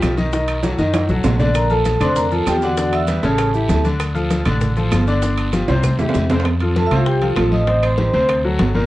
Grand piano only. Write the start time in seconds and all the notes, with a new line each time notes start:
Already playing: F3 F4 G4
0.17 D#3 D#4 D#5
0.33 D#3 D#4 D#5
0.64 F#3 F#4 A4
0.78 D#3 D#4 D#5
1.09 F#3 F#4 A4
1.39 D3 D4 D5
1.70 F3 F4 A4
2.00 D3 D4 D5
2.32 F3 F4 A4
2.62 D3 D4 D5
2.77 D3 D4 D5
3.09 G3 G4 B4
3.23 C#3 C#4 C#5
3.54 E3 E4 G4
3.84 D3 D4 D5
4.15 F3 F4 A4
4.46 D3 D4 D5
4.76 F3 F4 A4
5.07 D3 D4 D5
5.22 D3 D4 D5
5.53 F3 F4 G4
5.69 C3 C4 C5
5.99 E3 E4 G4
6.30 C3 C4 C5
6.61 F3 F4 A4
6.91 C3 C4 C5
7.22 F3 F4 A4
7.37 F3 F4 A4
7.68 C3 C4 C5
7.98 D#3 D#4 G4
8.13 C3 C4 C5
8.44 F#3 F#4 A4
8.75 A#2 A#3 A#4